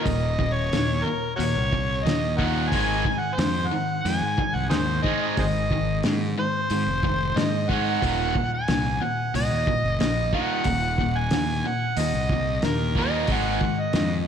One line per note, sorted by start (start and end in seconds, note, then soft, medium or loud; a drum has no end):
0.05 0.69 D#1 medium
0.05 0.36 D#2 medium
0.05 0.36 A#2 medium
0.05 0.54 D#5 medium
0.05 kick loud
0.05 open hi-hat soft
0.39 0.70 D#2 medium
0.39 0.70 A#2 medium
0.39 kick medium
0.53 1.06 C#5 medium
0.73 1.03 D#2 medium
0.73 1.03 A#2 medium
0.73 snare loud
0.73 open hi-hat soft
1.04 1.36 D#2 medium
1.04 1.37 A#2 medium
1.04 1.36 A#4 medium
1.36 1.69 D#2 medium
1.36 1.54 D#2 medium
1.36 1.69 A#2 medium
1.36 1.44 F#4 medium
1.36 1.42 A#4 medium
1.36 2.05 C#5 loud
1.36 open hi-hat soft
1.56 2.02 C2 medium
1.72 2.03 D#2 medium
1.72 2.03 A#2 medium
1.72 kick medium
2.03 2.68 D#2 loud
2.03 2.36 D#2 medium
2.03 2.36 A#2 medium
2.03 2.37 D#5 medium
2.03 snare loud
2.03 open hi-hat soft
2.37 2.70 D#2 medium
2.37 2.70 A#2 medium
2.37 2.70 D#3 medium
2.37 2.45 A#4 medium
2.37 2.45 D#5 medium
2.37 2.71 F#5 loud
2.37 kick medium
2.69 3.02 G#1 medium
2.69 3.04 G#2 medium
2.69 3.21 G#5 loud
2.69 kick loud
2.69 open hi-hat soft
2.74 3.04 D#3 medium
2.74 3.05 G#3 loud
3.05 3.36 G#2 medium
3.05 3.36 D#3 medium
3.05 kick medium
3.19 3.37 F#5 medium
3.35 3.68 F2 medium
3.35 3.68 G#2 medium
3.35 3.69 D#3 medium
3.35 3.69 C5 loud
3.35 snare loud
3.35 open hi-hat medium
3.67 4.04 F#5 loud
3.71 4.02 G#2 medium
3.71 4.02 D#3 medium
4.02 4.20 F2 medium
4.02 4.35 G#2 medium
4.02 4.35 D#3 medium
4.02 4.56 G#5 loud
4.02 open hi-hat medium
4.22 4.37 G#2 medium
4.38 4.68 G#2 medium
4.38 4.68 D#3 medium
4.38 kick medium
4.55 4.70 C2 medium
4.55 4.69 F#5 medium
4.70 5.01 D#2 medium
4.70 5.01 G#2 medium
4.70 5.01 D#3 medium
4.70 4.78 D#4 medium
4.70 4.78 G#4 medium
4.70 5.01 C5 medium
4.70 snare loud
4.70 open hi-hat soft
5.03 5.35 G#2 medium
5.03 5.35 D#3 medium
5.03 5.35 G#3 medium
5.03 5.19 D#5 medium
5.03 kick medium
5.22 5.37 D#5 medium
5.37 6.00 G#1 medium
5.37 5.68 G#2 medium
5.37 5.68 D#3 medium
5.37 5.45 G#4 medium
5.37 5.47 C5 medium
5.37 6.00 D#5 medium
5.37 kick loud
5.37 open hi-hat soft
5.71 6.01 G#2 medium
5.71 6.01 D#3 medium
5.71 kick medium
6.03 6.34 G#2 medium
6.03 6.35 G#2 medium
6.03 6.35 D#3 medium
6.03 snare loud
6.03 open hi-hat soft
6.38 6.67 G#2 medium
6.38 6.67 D#3 medium
6.38 7.40 C5 loud
6.70 6.85 G#2 medium
6.70 7.00 G#2 medium
6.70 7.01 D#3 medium
6.70 open hi-hat soft
6.87 7.32 F1 medium
7.03 7.33 G#2 medium
7.03 7.34 D#3 medium
7.03 kick medium
7.36 7.66 G#2 medium
7.36 7.98 G#2 medium
7.36 7.66 D#3 medium
7.36 7.71 D#5 medium
7.36 snare loud
7.36 open hi-hat soft
7.69 8.00 G#2 medium
7.69 8.00 D#3 medium
7.69 8.00 G#3 medium
7.69 8.52 F#5 loud
7.69 kick medium
8.02 8.32 D#1 medium
8.02 8.33 D#2 medium
8.02 8.33 A#2 medium
8.02 8.34 D#3 loud
8.02 kick medium
8.02 open hi-hat soft
8.35 8.65 D#2 medium
8.35 8.65 A#2 medium
8.35 kick medium
8.54 9.04 G#5 medium
8.68 8.98 C2 medium
8.68 8.98 D#2 medium
8.68 8.99 A#2 medium
8.68 snare loud
8.68 open hi-hat soft
9.02 9.31 D#2 medium
9.02 9.31 A#2 medium
9.02 9.35 F#5 medium
9.34 9.49 C2 medium
9.34 9.64 D#2 medium
9.34 9.64 A#2 medium
9.34 9.97 D#5 loud
9.34 open hi-hat medium
9.51 9.66 D#2 medium
9.67 9.97 D#2 medium
9.67 9.98 A#2 medium
9.67 kick medium
9.84 9.99 F#1 medium
10.00 10.30 A#1 medium
10.00 10.30 D#2 medium
10.00 10.30 A#2 medium
10.00 10.31 D#5 medium
10.00 snare loud
10.00 open hi-hat soft
10.33 10.64 D#2 medium
10.33 10.65 A#2 medium
10.33 10.65 D#3 loud
10.33 11.19 F#5 loud
10.33 kick medium
10.64 11.28 D#1 medium
10.64 10.96 D#2 medium
10.64 10.96 A#2 medium
10.64 kick loud
10.64 open hi-hat medium
10.98 11.30 D#2 medium
10.98 11.30 A#2 medium
10.98 kick medium
11.18 11.69 G#5 loud
11.31 11.62 D#2 medium
11.31 11.62 A#2 medium
11.31 snare loud
11.31 open hi-hat soft
11.65 11.95 D#2 medium
11.65 11.95 A#2 medium
11.65 12.00 F#5 medium
11.97 12.12 D#2 medium
11.97 12.28 D#2 medium
11.97 12.28 A#2 medium
11.97 12.66 D#5 loud
11.97 open hi-hat medium
12.14 12.59 C2 medium
12.30 12.61 D#2 medium
12.30 12.61 A#2 medium
12.30 kick medium
12.62 13.25 D#2 medium
12.62 12.94 D#2 medium
12.62 12.94 A#2 medium
12.62 12.97 A#4 medium
12.62 snare loud
12.62 open hi-hat soft
12.95 13.28 D#2 medium
12.95 13.28 A#2 loud
12.95 13.28 D#3 loud
12.95 13.28 D#5 medium
12.95 kick medium
13.27 13.58 G#1 medium
13.27 13.60 G#2 medium
13.27 13.61 D#3 medium
13.27 13.61 G#3 medium
13.27 kick loud
13.27 open hi-hat soft
13.31 13.82 F#5 loud
13.61 13.92 G#2 medium
13.61 13.93 D#3 medium
13.61 kick medium
13.80 14.15 D#5 medium
13.93 14.24 F2 medium
13.93 14.25 G#2 medium
13.93 14.25 D#3 medium
13.93 snare loud
13.93 open hi-hat soft